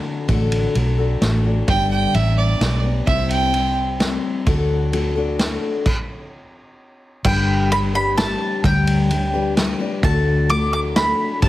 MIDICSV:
0, 0, Header, 1, 6, 480
1, 0, Start_track
1, 0, Key_signature, 1, "major"
1, 0, Tempo, 463679
1, 298, Time_signature, 3, 2, 24, 8
1, 11891, End_track
2, 0, Start_track
2, 0, Title_t, "Mandolin"
2, 0, Program_c, 0, 25
2, 7508, Note_on_c, 0, 79, 96
2, 7987, Note_off_c, 0, 79, 0
2, 7991, Note_on_c, 0, 83, 112
2, 8055, Note_off_c, 0, 83, 0
2, 8232, Note_on_c, 0, 83, 100
2, 8452, Note_off_c, 0, 83, 0
2, 8463, Note_on_c, 0, 81, 97
2, 8910, Note_off_c, 0, 81, 0
2, 8957, Note_on_c, 0, 79, 91
2, 9869, Note_off_c, 0, 79, 0
2, 10397, Note_on_c, 0, 81, 93
2, 10868, Note_off_c, 0, 81, 0
2, 10872, Note_on_c, 0, 86, 115
2, 11096, Note_off_c, 0, 86, 0
2, 11109, Note_on_c, 0, 86, 97
2, 11173, Note_off_c, 0, 86, 0
2, 11348, Note_on_c, 0, 83, 97
2, 11791, Note_off_c, 0, 83, 0
2, 11828, Note_on_c, 0, 81, 91
2, 11891, Note_off_c, 0, 81, 0
2, 11891, End_track
3, 0, Start_track
3, 0, Title_t, "Fiddle"
3, 0, Program_c, 1, 110
3, 1742, Note_on_c, 1, 79, 101
3, 1964, Note_off_c, 1, 79, 0
3, 1978, Note_on_c, 1, 79, 91
3, 2219, Note_on_c, 1, 76, 84
3, 2235, Note_off_c, 1, 79, 0
3, 2453, Note_off_c, 1, 76, 0
3, 2459, Note_on_c, 1, 74, 71
3, 2907, Note_off_c, 1, 74, 0
3, 3175, Note_on_c, 1, 76, 84
3, 3402, Note_off_c, 1, 76, 0
3, 3421, Note_on_c, 1, 79, 95
3, 3868, Note_off_c, 1, 79, 0
3, 11891, End_track
4, 0, Start_track
4, 0, Title_t, "Steel-string acoustic guitar"
4, 0, Program_c, 2, 25
4, 0, Note_on_c, 2, 50, 84
4, 0, Note_on_c, 2, 57, 63
4, 0, Note_on_c, 2, 62, 73
4, 0, Note_on_c, 2, 66, 66
4, 0, Note_on_c, 2, 69, 63
4, 284, Note_off_c, 2, 57, 0
4, 287, Note_off_c, 2, 50, 0
4, 291, Note_off_c, 2, 66, 0
4, 291, Note_on_c, 2, 50, 85
4, 292, Note_off_c, 2, 69, 0
4, 295, Note_off_c, 2, 62, 0
4, 296, Note_on_c, 2, 57, 85
4, 299, Note_on_c, 2, 62, 95
4, 303, Note_on_c, 2, 66, 100
4, 304, Note_on_c, 2, 69, 105
4, 760, Note_off_c, 2, 57, 0
4, 772, Note_on_c, 2, 57, 60
4, 773, Note_off_c, 2, 62, 0
4, 774, Note_off_c, 2, 66, 0
4, 775, Note_off_c, 2, 50, 0
4, 777, Note_on_c, 2, 62, 58
4, 782, Note_off_c, 2, 69, 0
4, 786, Note_on_c, 2, 66, 68
4, 793, Note_on_c, 2, 69, 63
4, 1003, Note_off_c, 2, 69, 0
4, 1013, Note_off_c, 2, 66, 0
4, 1016, Note_off_c, 2, 57, 0
4, 1016, Note_on_c, 2, 69, 52
4, 1018, Note_off_c, 2, 62, 0
4, 1026, Note_on_c, 2, 66, 44
4, 1034, Note_on_c, 2, 62, 40
4, 1249, Note_off_c, 2, 62, 0
4, 1255, Note_on_c, 2, 57, 61
4, 1257, Note_off_c, 2, 66, 0
4, 1258, Note_off_c, 2, 69, 0
4, 1261, Note_on_c, 2, 62, 69
4, 1270, Note_on_c, 2, 66, 75
4, 1272, Note_on_c, 2, 69, 73
4, 1480, Note_off_c, 2, 69, 0
4, 1490, Note_off_c, 2, 66, 0
4, 1492, Note_on_c, 2, 69, 45
4, 1497, Note_off_c, 2, 57, 0
4, 1501, Note_off_c, 2, 62, 0
4, 1502, Note_on_c, 2, 66, 44
4, 1511, Note_on_c, 2, 62, 41
4, 1734, Note_off_c, 2, 62, 0
4, 1736, Note_off_c, 2, 69, 0
4, 1736, Note_on_c, 2, 43, 78
4, 1741, Note_off_c, 2, 66, 0
4, 1741, Note_on_c, 2, 50, 81
4, 1743, Note_on_c, 2, 55, 78
4, 1745, Note_on_c, 2, 59, 80
4, 1746, Note_on_c, 2, 62, 90
4, 1748, Note_on_c, 2, 71, 84
4, 2209, Note_off_c, 2, 55, 0
4, 2209, Note_off_c, 2, 59, 0
4, 2213, Note_on_c, 2, 55, 51
4, 2216, Note_off_c, 2, 62, 0
4, 2219, Note_off_c, 2, 43, 0
4, 2221, Note_off_c, 2, 50, 0
4, 2221, Note_on_c, 2, 59, 49
4, 2222, Note_off_c, 2, 71, 0
4, 2228, Note_on_c, 2, 62, 59
4, 2234, Note_on_c, 2, 71, 64
4, 2684, Note_off_c, 2, 55, 0
4, 2692, Note_off_c, 2, 59, 0
4, 2696, Note_on_c, 2, 55, 55
4, 2699, Note_off_c, 2, 62, 0
4, 2702, Note_off_c, 2, 71, 0
4, 2704, Note_on_c, 2, 59, 56
4, 2711, Note_on_c, 2, 62, 59
4, 2714, Note_on_c, 2, 71, 69
4, 2925, Note_off_c, 2, 71, 0
4, 2933, Note_off_c, 2, 62, 0
4, 2937, Note_on_c, 2, 71, 45
4, 2938, Note_off_c, 2, 59, 0
4, 2939, Note_off_c, 2, 55, 0
4, 2946, Note_on_c, 2, 62, 44
4, 2950, Note_on_c, 2, 59, 36
4, 2957, Note_on_c, 2, 55, 42
4, 3168, Note_off_c, 2, 55, 0
4, 3178, Note_on_c, 2, 48, 80
4, 3179, Note_off_c, 2, 71, 0
4, 3180, Note_off_c, 2, 59, 0
4, 3180, Note_on_c, 2, 55, 77
4, 3184, Note_off_c, 2, 62, 0
4, 3184, Note_on_c, 2, 60, 90
4, 3188, Note_on_c, 2, 64, 80
4, 3188, Note_on_c, 2, 72, 81
4, 3642, Note_off_c, 2, 55, 0
4, 3651, Note_off_c, 2, 60, 0
4, 3654, Note_on_c, 2, 55, 55
4, 3658, Note_off_c, 2, 64, 0
4, 3660, Note_off_c, 2, 48, 0
4, 3661, Note_off_c, 2, 72, 0
4, 3663, Note_on_c, 2, 60, 55
4, 3671, Note_on_c, 2, 64, 64
4, 3674, Note_on_c, 2, 72, 57
4, 4122, Note_off_c, 2, 55, 0
4, 4130, Note_off_c, 2, 60, 0
4, 4135, Note_on_c, 2, 55, 67
4, 4136, Note_off_c, 2, 64, 0
4, 4142, Note_on_c, 2, 60, 68
4, 4143, Note_off_c, 2, 72, 0
4, 4149, Note_on_c, 2, 64, 70
4, 4155, Note_on_c, 2, 72, 79
4, 4619, Note_off_c, 2, 55, 0
4, 4619, Note_on_c, 2, 50, 82
4, 4623, Note_off_c, 2, 60, 0
4, 4626, Note_off_c, 2, 64, 0
4, 4627, Note_on_c, 2, 57, 86
4, 4628, Note_on_c, 2, 62, 88
4, 4629, Note_off_c, 2, 72, 0
4, 4631, Note_on_c, 2, 66, 92
4, 4633, Note_on_c, 2, 69, 90
4, 5085, Note_off_c, 2, 57, 0
4, 5091, Note_off_c, 2, 62, 0
4, 5098, Note_off_c, 2, 66, 0
4, 5098, Note_on_c, 2, 57, 58
4, 5101, Note_off_c, 2, 69, 0
4, 5102, Note_off_c, 2, 50, 0
4, 5103, Note_on_c, 2, 62, 67
4, 5110, Note_on_c, 2, 66, 68
4, 5113, Note_on_c, 2, 69, 71
4, 5326, Note_off_c, 2, 69, 0
4, 5336, Note_off_c, 2, 66, 0
4, 5339, Note_on_c, 2, 69, 52
4, 5341, Note_off_c, 2, 57, 0
4, 5344, Note_off_c, 2, 62, 0
4, 5349, Note_on_c, 2, 66, 50
4, 5357, Note_on_c, 2, 62, 47
4, 5575, Note_off_c, 2, 62, 0
4, 5578, Note_on_c, 2, 57, 64
4, 5580, Note_off_c, 2, 66, 0
4, 5581, Note_off_c, 2, 69, 0
4, 5587, Note_on_c, 2, 62, 69
4, 5592, Note_on_c, 2, 66, 74
4, 5598, Note_on_c, 2, 69, 75
4, 6061, Note_off_c, 2, 57, 0
4, 6066, Note_off_c, 2, 62, 0
4, 6068, Note_off_c, 2, 66, 0
4, 6071, Note_off_c, 2, 69, 0
4, 7499, Note_on_c, 2, 43, 90
4, 7503, Note_on_c, 2, 50, 81
4, 7506, Note_on_c, 2, 55, 89
4, 7508, Note_on_c, 2, 62, 88
4, 7510, Note_on_c, 2, 67, 90
4, 7513, Note_on_c, 2, 71, 86
4, 7961, Note_off_c, 2, 55, 0
4, 7973, Note_on_c, 2, 55, 52
4, 7976, Note_off_c, 2, 67, 0
4, 7977, Note_off_c, 2, 62, 0
4, 7981, Note_on_c, 2, 62, 60
4, 7982, Note_off_c, 2, 43, 0
4, 7982, Note_off_c, 2, 71, 0
4, 7984, Note_off_c, 2, 50, 0
4, 8213, Note_on_c, 2, 71, 53
4, 8215, Note_off_c, 2, 62, 0
4, 8219, Note_off_c, 2, 55, 0
4, 8221, Note_on_c, 2, 67, 51
4, 8228, Note_on_c, 2, 62, 42
4, 8234, Note_on_c, 2, 55, 43
4, 8446, Note_off_c, 2, 55, 0
4, 8453, Note_off_c, 2, 62, 0
4, 8458, Note_on_c, 2, 55, 57
4, 8459, Note_off_c, 2, 67, 0
4, 8459, Note_off_c, 2, 71, 0
4, 8465, Note_on_c, 2, 62, 66
4, 8472, Note_on_c, 2, 67, 70
4, 8477, Note_on_c, 2, 71, 68
4, 8933, Note_off_c, 2, 55, 0
4, 8940, Note_off_c, 2, 67, 0
4, 8940, Note_on_c, 2, 43, 81
4, 8942, Note_off_c, 2, 71, 0
4, 8942, Note_on_c, 2, 50, 90
4, 8944, Note_off_c, 2, 62, 0
4, 8945, Note_on_c, 2, 55, 87
4, 8948, Note_on_c, 2, 62, 84
4, 8952, Note_on_c, 2, 67, 91
4, 8954, Note_on_c, 2, 71, 92
4, 9406, Note_off_c, 2, 55, 0
4, 9419, Note_on_c, 2, 55, 61
4, 9420, Note_off_c, 2, 67, 0
4, 9421, Note_off_c, 2, 62, 0
4, 9422, Note_off_c, 2, 43, 0
4, 9423, Note_off_c, 2, 50, 0
4, 9425, Note_on_c, 2, 62, 61
4, 9429, Note_off_c, 2, 71, 0
4, 9432, Note_on_c, 2, 67, 66
4, 9439, Note_on_c, 2, 71, 59
4, 9651, Note_off_c, 2, 71, 0
4, 9661, Note_off_c, 2, 55, 0
4, 9661, Note_off_c, 2, 67, 0
4, 9663, Note_on_c, 2, 71, 61
4, 9665, Note_off_c, 2, 62, 0
4, 9673, Note_on_c, 2, 67, 58
4, 9680, Note_on_c, 2, 62, 54
4, 9683, Note_on_c, 2, 55, 50
4, 9893, Note_off_c, 2, 55, 0
4, 9899, Note_off_c, 2, 62, 0
4, 9903, Note_off_c, 2, 71, 0
4, 9904, Note_off_c, 2, 67, 0
4, 9906, Note_on_c, 2, 55, 80
4, 9912, Note_on_c, 2, 62, 76
4, 9916, Note_on_c, 2, 67, 87
4, 9923, Note_on_c, 2, 71, 75
4, 10128, Note_off_c, 2, 71, 0
4, 10134, Note_off_c, 2, 67, 0
4, 10141, Note_on_c, 2, 71, 61
4, 10142, Note_off_c, 2, 62, 0
4, 10144, Note_off_c, 2, 55, 0
4, 10146, Note_on_c, 2, 67, 53
4, 10154, Note_on_c, 2, 62, 47
4, 10161, Note_on_c, 2, 55, 46
4, 10378, Note_off_c, 2, 62, 0
4, 10381, Note_off_c, 2, 55, 0
4, 10382, Note_off_c, 2, 71, 0
4, 10384, Note_on_c, 2, 50, 81
4, 10385, Note_off_c, 2, 67, 0
4, 10385, Note_on_c, 2, 57, 89
4, 10391, Note_on_c, 2, 62, 87
4, 10394, Note_on_c, 2, 66, 91
4, 10395, Note_on_c, 2, 69, 92
4, 10847, Note_off_c, 2, 57, 0
4, 10859, Note_on_c, 2, 57, 68
4, 10860, Note_off_c, 2, 66, 0
4, 10862, Note_off_c, 2, 62, 0
4, 10863, Note_off_c, 2, 50, 0
4, 10865, Note_off_c, 2, 69, 0
4, 10866, Note_on_c, 2, 62, 57
4, 10872, Note_on_c, 2, 66, 64
4, 10878, Note_on_c, 2, 69, 62
4, 11333, Note_off_c, 2, 57, 0
4, 11344, Note_off_c, 2, 66, 0
4, 11345, Note_on_c, 2, 57, 67
4, 11346, Note_off_c, 2, 62, 0
4, 11350, Note_off_c, 2, 69, 0
4, 11350, Note_on_c, 2, 62, 64
4, 11356, Note_on_c, 2, 66, 63
4, 11361, Note_on_c, 2, 69, 68
4, 11820, Note_on_c, 2, 43, 76
4, 11823, Note_off_c, 2, 57, 0
4, 11826, Note_on_c, 2, 50, 93
4, 11828, Note_off_c, 2, 66, 0
4, 11828, Note_on_c, 2, 55, 84
4, 11829, Note_off_c, 2, 62, 0
4, 11831, Note_off_c, 2, 69, 0
4, 11832, Note_on_c, 2, 67, 99
4, 11833, Note_on_c, 2, 62, 98
4, 11837, Note_on_c, 2, 71, 98
4, 11891, Note_off_c, 2, 43, 0
4, 11891, Note_off_c, 2, 50, 0
4, 11891, Note_off_c, 2, 55, 0
4, 11891, Note_off_c, 2, 62, 0
4, 11891, Note_off_c, 2, 67, 0
4, 11891, Note_off_c, 2, 71, 0
4, 11891, End_track
5, 0, Start_track
5, 0, Title_t, "Fingered electric bass"
5, 0, Program_c, 3, 33
5, 296, Note_on_c, 3, 33, 77
5, 674, Note_off_c, 3, 33, 0
5, 778, Note_on_c, 3, 35, 80
5, 1187, Note_off_c, 3, 35, 0
5, 1255, Note_on_c, 3, 33, 66
5, 1665, Note_off_c, 3, 33, 0
5, 1740, Note_on_c, 3, 31, 84
5, 2117, Note_off_c, 3, 31, 0
5, 2217, Note_on_c, 3, 33, 81
5, 2627, Note_off_c, 3, 33, 0
5, 2695, Note_on_c, 3, 35, 70
5, 3106, Note_off_c, 3, 35, 0
5, 3181, Note_on_c, 3, 36, 86
5, 4311, Note_off_c, 3, 36, 0
5, 4625, Note_on_c, 3, 38, 87
5, 5754, Note_off_c, 3, 38, 0
5, 7500, Note_on_c, 3, 31, 86
5, 8630, Note_off_c, 3, 31, 0
5, 8943, Note_on_c, 3, 38, 84
5, 10072, Note_off_c, 3, 38, 0
5, 10384, Note_on_c, 3, 38, 89
5, 11512, Note_off_c, 3, 38, 0
5, 11825, Note_on_c, 3, 31, 92
5, 11891, Note_off_c, 3, 31, 0
5, 11891, End_track
6, 0, Start_track
6, 0, Title_t, "Drums"
6, 296, Note_on_c, 9, 51, 52
6, 297, Note_on_c, 9, 36, 90
6, 399, Note_off_c, 9, 51, 0
6, 400, Note_off_c, 9, 36, 0
6, 536, Note_on_c, 9, 51, 63
6, 639, Note_off_c, 9, 51, 0
6, 778, Note_on_c, 9, 51, 54
6, 882, Note_off_c, 9, 51, 0
6, 1259, Note_on_c, 9, 38, 79
6, 1259, Note_on_c, 9, 51, 56
6, 1363, Note_off_c, 9, 38, 0
6, 1363, Note_off_c, 9, 51, 0
6, 1737, Note_on_c, 9, 51, 58
6, 1738, Note_on_c, 9, 36, 92
6, 1841, Note_off_c, 9, 51, 0
6, 1842, Note_off_c, 9, 36, 0
6, 2220, Note_on_c, 9, 51, 59
6, 2323, Note_off_c, 9, 51, 0
6, 2702, Note_on_c, 9, 38, 73
6, 2702, Note_on_c, 9, 51, 60
6, 2805, Note_off_c, 9, 38, 0
6, 2805, Note_off_c, 9, 51, 0
6, 3180, Note_on_c, 9, 36, 92
6, 3180, Note_on_c, 9, 51, 60
6, 3284, Note_off_c, 9, 36, 0
6, 3284, Note_off_c, 9, 51, 0
6, 3421, Note_on_c, 9, 51, 68
6, 3524, Note_off_c, 9, 51, 0
6, 3661, Note_on_c, 9, 51, 62
6, 3765, Note_off_c, 9, 51, 0
6, 4142, Note_on_c, 9, 38, 81
6, 4142, Note_on_c, 9, 51, 58
6, 4246, Note_off_c, 9, 38, 0
6, 4246, Note_off_c, 9, 51, 0
6, 4622, Note_on_c, 9, 51, 52
6, 4624, Note_on_c, 9, 36, 90
6, 4726, Note_off_c, 9, 51, 0
6, 4727, Note_off_c, 9, 36, 0
6, 5105, Note_on_c, 9, 51, 56
6, 5208, Note_off_c, 9, 51, 0
6, 5582, Note_on_c, 9, 38, 83
6, 5582, Note_on_c, 9, 51, 60
6, 5686, Note_off_c, 9, 38, 0
6, 5686, Note_off_c, 9, 51, 0
6, 6062, Note_on_c, 9, 49, 75
6, 6064, Note_on_c, 9, 36, 92
6, 6165, Note_off_c, 9, 49, 0
6, 6168, Note_off_c, 9, 36, 0
6, 7499, Note_on_c, 9, 49, 98
6, 7503, Note_on_c, 9, 36, 102
6, 7603, Note_off_c, 9, 49, 0
6, 7606, Note_off_c, 9, 36, 0
6, 7987, Note_on_c, 9, 51, 64
6, 8091, Note_off_c, 9, 51, 0
6, 8466, Note_on_c, 9, 38, 83
6, 8466, Note_on_c, 9, 51, 63
6, 8570, Note_off_c, 9, 38, 0
6, 8570, Note_off_c, 9, 51, 0
6, 8942, Note_on_c, 9, 51, 58
6, 8943, Note_on_c, 9, 36, 98
6, 9046, Note_off_c, 9, 51, 0
6, 9047, Note_off_c, 9, 36, 0
6, 9185, Note_on_c, 9, 51, 69
6, 9288, Note_off_c, 9, 51, 0
6, 9426, Note_on_c, 9, 51, 64
6, 9529, Note_off_c, 9, 51, 0
6, 9906, Note_on_c, 9, 38, 83
6, 9906, Note_on_c, 9, 51, 66
6, 10010, Note_off_c, 9, 38, 0
6, 10010, Note_off_c, 9, 51, 0
6, 10384, Note_on_c, 9, 36, 110
6, 10386, Note_on_c, 9, 51, 60
6, 10488, Note_off_c, 9, 36, 0
6, 10489, Note_off_c, 9, 51, 0
6, 10863, Note_on_c, 9, 51, 67
6, 10967, Note_off_c, 9, 51, 0
6, 11345, Note_on_c, 9, 38, 87
6, 11345, Note_on_c, 9, 51, 63
6, 11448, Note_off_c, 9, 38, 0
6, 11448, Note_off_c, 9, 51, 0
6, 11823, Note_on_c, 9, 51, 60
6, 11825, Note_on_c, 9, 36, 100
6, 11891, Note_off_c, 9, 36, 0
6, 11891, Note_off_c, 9, 51, 0
6, 11891, End_track
0, 0, End_of_file